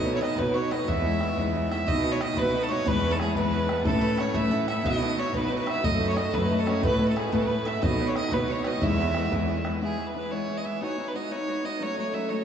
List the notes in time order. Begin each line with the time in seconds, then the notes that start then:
Already playing: B2 D#5
0.04 B3 D#4 F#4 C#5
0.13 C#5
0.21 B3 D#4 F#4 C#5 D#5, bodhran
0.37 B2 B3 D#4 F#4 B4 C#5, bodhran
0.54 B3 D#4 F#4 C#5, bodhran
0.71 B3 D#4 F#4 C#5 D#5, bodhran
0.88 E2 E3 G#3 B3 E4 E5, bodhran
1.05 E3 G#3 B3 E4
1.21 E3 G#3 B3 E4, bodhran
1.37 E2 E3 G#3 B3 E4, bodhran
1.54 E3 G#3 B3 E4, bodhran
1.70 E3 G#3 B3 E4 E5, bodhran
1.87 B2 B3 D#4 F#4 B4 D#5, bodhran
2.03 B3 D#4 F#4 B4
2.12 C#5
2.20 B3 D#4 F#4 B4 D#5, bodhran
2.36 B2 B3 D#4 F#4 B4, bodhran
2.53 B3 D#4 F#4 B4, bodhran
2.62 A4
2.69 B3 D#4 F#4 B4 C#5
2.86 E2 E3 G#3 B3 E4 B4, bodhran
3.04 E3 G#3 B3 E4
3.11 A4
3.20 E3 G#3 B3 E4 G#4, bodhran
3.35 E2 E3 G#3 B3 E4 B4, bodhran
3.52 E3 G#3 B3 E4, bodhran
3.68 E3 G#3 B3 E4, bodhran
3.85 A2 E3 A3 C#4 E4 A4, bodhran
4.01 E3 A3 C#4 E4 B4
4.17 E3 A3 C#4 E4 C#5, bodhran
4.34 A2 E3 A3 C#4 E4 E5, bodhran
4.51 E3 A3 C#4 E4 F#5, bodhran
4.66 E3 A3 C#4 E4 E5, bodhran
4.83 B2 B3 D#4 F#4 B4 D#5, bodhran
5.00 B3 D#4 F#4 B4 D#5
5.16 B3 D#4 F#4 B4 C#5
5.33 B2 B3 D#4 F#4 B4, bodhran
5.45 B4
5.49 B3 D#4 F#4 B4, bodhran
5.57 B4
5.66 B3 D#4 F#4 B4 E5, bodhran
5.83 F#2 F#3 A3 C#4 A4 D#5, bodhran
5.99 F#3 A3 C#4 A4
6.08 C#5
6.15 F#3 A3 C#4 A4 D#5, bodhran
6.32 F#2 F#3 A3 C#4 A4 B4, bodhran
6.49 F#3 A3 C#4 A4, bodhran
6.59 A4
6.66 F#3 A3 C#4 A4 C#5, bodhran
6.83 A2 A3 B3 E4 A4 B4, bodhran
6.99 A3 B3 E4 A4
7.07 A4
7.15 A3 B3 E4 G#4 A4, bodhran
7.32 A2 A3 B3 E4 A4 B4, bodhran
7.48 A3 B3 E4 A4, bodhran
7.65 A3 B3 E4 A4 E5, bodhran
7.81 B2 B3 D#4 F#4 C#5 D#5, bodhran
7.99 B3 D#4 F#4 C#5
8.07 C#5
8.15 B3 D#4 F#4 C#5 D#5, bodhran
8.31 B2 B3 D#4 F#4 B4 C#5, bodhran
8.48 B3 D#4 F#4 C#5, bodhran
8.64 B3 D#4 F#4 C#5 D#5, bodhran
8.81 E2 E3 G#3 B3 E4 E5, bodhran
8.98 E3 G#3 B3 E4
9.15 E3 G#3 B3 E4, bodhran
9.31 E2 E3 G#3 B3 E4, bodhran
9.48 E3 G#3 B3 E4, bodhran
9.64 E3 G#3 B3 E4, bodhran
9.81 E3 G#3 B3 E4 G#4
9.97 E3 G#3 B3 E4
10.07 B4
10.13 E3 G#3 B3 E4 B4
10.31 E3 G#3 B3 E4 C#5
10.47 E3 G#3 B3 E4
10.58 D#5
10.64 E3 G#3 B3 E4 E5
10.81 B3 D#4 F#4 B4 C#5
10.98 B3 D#4 F#4 B4
11.08 B4
11.14 B3 D#4 F#4 B4 D#5
11.31 B3 D#4 F#4 B4 C#5
11.47 B3 D#4 F#4 B4
11.63 B3 D#4 F#4 B4 D#5
11.80 F#3 A3 C#4 A4 C#5
11.97 F#3 A3 C#4 A4 C#5
12.13 F#3 A3 C#4 A4 E5
12.29 F#3 A3 C#4 A4 C#5